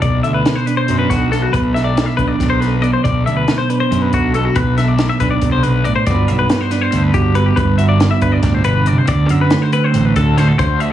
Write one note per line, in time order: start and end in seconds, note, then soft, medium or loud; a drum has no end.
0.00 0.20 B1 medium
0.00 1.53 B2 medium
0.00 0.23 D5 medium
0.00 kick loud
0.00 closed hi-hat medium
0.23 0.41 D2 medium
0.23 1.11 A4 soft
0.23 0.34 E5 medium
0.23 closed hi-hat soft
0.34 0.56 B4 medium
0.45 1.31 B3 medium
0.45 snare medium
0.45 closed hi-hat medium
0.56 0.66 C5 medium
0.66 2.17 D4 medium
0.66 0.77 B4 medium
0.66 closed hi-hat medium
0.77 0.98 C5 medium
0.88 1.06 F#2 medium
0.88 2.38 F#3 medium
0.88 closed hi-hat medium
0.99 1.10 B4 medium
1.10 1.45 B1 medium
1.10 1.31 F#4 medium
1.10 1.56 A4 soft
1.10 kick medium
1.10 snare soft
1.10 closed hi-hat medium
1.31 1.78 B3 soft
1.31 1.42 A4 medium
1.31 snare soft
1.31 closed hi-hat soft
1.42 1.53 F#4 medium
1.53 2.05 B1 medium
1.53 3.02 B2 medium
1.53 1.74 B4 medium
1.53 kick medium
1.53 closed hi-hat medium
1.74 2.60 A4 soft
1.74 1.84 E5 medium
1.74 snare soft
1.74 closed hi-hat soft
1.84 2.06 D5 medium
1.96 2.80 B3 medium
1.96 snare medium
1.96 closed hi-hat medium
2.06 2.17 E5 medium
2.17 2.35 B1 medium
2.17 3.69 D4 medium
2.17 2.28 B4 medium
2.17 kick medium
2.17 closed hi-hat soft
2.28 2.49 D5 medium
2.38 2.92 B1 medium
2.38 3.90 F#3 medium
2.38 kick medium
2.38 snare soft
2.38 closed hi-hat medium
2.50 2.60 C5 medium
2.60 3.06 A4 soft
2.60 2.82 B4 medium
2.60 snare soft
2.60 closed hi-hat soft
2.81 3.27 B3 medium
2.81 2.93 D5 medium
2.81 closed hi-hat soft
2.93 3.04 C5 medium
3.03 3.22 B1 medium
3.03 4.52 B2 medium
3.03 3.26 D5 medium
3.03 kick loud
3.03 closed hi-hat medium
3.24 3.44 D2 medium
3.24 4.11 A4 soft
3.24 3.36 E5 medium
3.24 closed hi-hat soft
3.37 3.58 B4 medium
3.47 4.35 B3 medium
3.47 snare medium
3.47 closed hi-hat medium
3.58 3.70 C5 medium
3.70 5.22 D4 medium
3.70 3.80 B4 medium
3.70 closed hi-hat soft
3.80 4.02 C5 medium
3.91 4.08 F#2 medium
3.91 5.44 F#3 medium
3.91 closed hi-hat medium
4.02 4.13 B4 medium
4.13 4.47 B1 medium
4.13 4.35 F#4 medium
4.13 4.54 A4 soft
4.13 kick medium
4.13 closed hi-hat medium
4.34 4.81 B3 medium
4.34 4.45 A4 medium
4.34 closed hi-hat soft
4.45 4.56 F#4 medium
4.56 5.07 B1 medium
4.56 5.63 B2 medium
4.56 4.77 B4 medium
4.56 kick loud
4.56 closed hi-hat medium
4.78 6.05 A4 medium
4.78 4.88 E5 medium
4.78 snare soft
4.78 closed hi-hat medium
4.88 5.09 D5 medium
4.98 6.07 B3 medium
4.98 snare loud
4.98 closed hi-hat medium
5.09 5.20 E5 medium
5.20 5.38 B1 medium
5.20 6.08 D4 medium
5.20 5.30 B4 medium
5.20 kick medium
5.20 closed hi-hat medium
5.31 5.52 D5 medium
5.41 5.94 B1 medium
5.41 5.64 C3 medium
5.41 kick loud
5.41 closed hi-hat medium
5.52 5.63 C5 medium
5.63 5.85 B2 medium
5.63 5.84 B4 medium
5.63 closed hi-hat medium
5.84 6.07 A2 medium
5.84 5.95 D5 medium
5.84 closed hi-hat medium
5.96 6.06 C5 medium
6.07 6.24 G1 loud
6.07 6.91 G2 medium
6.07 6.49 B3 medium
6.07 6.71 D4 medium
6.07 6.28 F#4 medium
6.07 8.45 B4 medium
6.07 6.28 D5 medium
6.07 kick loud
6.07 closed hi-hat medium
6.28 6.46 B1 medium
6.28 7.13 F#4 medium
6.28 6.38 E5 medium
6.28 closed hi-hat soft
6.39 6.61 B4 medium
6.50 7.34 B3 medium
6.50 snare medium
6.50 closed hi-hat medium
6.61 6.71 C5 medium
6.71 8.21 D4 medium
6.71 6.82 B4 medium
6.71 snare soft
6.71 closed hi-hat medium
6.82 7.03 C5 medium
6.92 7.10 D2 medium
6.92 7.56 G2 medium
6.92 closed hi-hat medium
7.03 7.14 B4 medium
7.14 7.49 G1 medium
7.14 7.60 F#4 soft
7.14 7.36 G4 medium
7.14 kick medium
7.14 closed hi-hat soft
7.34 7.99 B3 medium
7.34 7.46 B4 medium
7.34 closed hi-hat soft
7.46 7.57 G4 medium
7.56 8.09 G1 medium
7.56 8.41 G2 medium
7.56 7.78 B4 medium
7.56 kick loud
7.56 closed hi-hat medium
7.78 9.28 F#4 medium
7.78 7.88 E5 medium
7.78 closed hi-hat soft
7.89 8.10 D5 medium
7.99 9.50 B3 medium
7.99 snare medium
7.99 closed hi-hat medium
8.11 8.22 E5 medium
8.21 8.39 G1 medium
8.21 9.72 D4 medium
8.21 8.32 B4 medium
8.21 kick medium
8.21 closed hi-hat medium
8.32 8.54 D5 medium
8.42 8.95 G1 medium
8.42 8.63 A2 medium
8.42 kick loud
8.42 snare soft
8.42 closed hi-hat medium
8.54 8.64 C5 medium
8.64 8.86 B2 medium
8.64 8.87 B4 medium
8.64 closed hi-hat medium
8.85 9.07 C3 medium
8.85 8.98 D5 medium
8.85 closed hi-hat medium
8.98 9.08 C5 medium
9.07 9.25 D2 medium
9.07 10.56 D3 medium
9.07 9.30 D5 medium
9.07 kick loud
9.07 closed hi-hat medium
9.29 9.47 F#2 medium
9.29 10.16 F#4 medium
9.29 9.41 E5 medium
9.29 closed hi-hat medium
9.41 9.62 B4 medium
9.50 10.36 A3 medium
9.50 snare loud
9.50 closed hi-hat medium
9.62 9.73 C5 medium
9.73 10.62 C4 medium
9.73 9.84 B4 medium
9.73 closed hi-hat medium
9.84 10.05 C5 medium
9.92 10.11 A1 medium
9.92 10.55 A2 medium
9.92 closed hi-hat medium
10.05 10.16 B4 medium
10.16 10.50 D2 medium
10.16 10.81 F#4 medium
10.16 10.38 A4 medium
10.16 kick medium
10.16 closed hi-hat medium
10.37 10.56 A3 medium
10.37 10.48 C5 medium
10.37 snare soft
10.37 closed hi-hat medium
10.48 10.59 A4 medium
10.59 10.93 D2 loud
10.59 10.93 D3 medium
10.59 10.80 C5 medium
10.59 kick loud
10.59 closed hi-hat medium
10.80 10.93 F#4 medium
10.80 10.91 E5 medium
10.80 closed hi-hat medium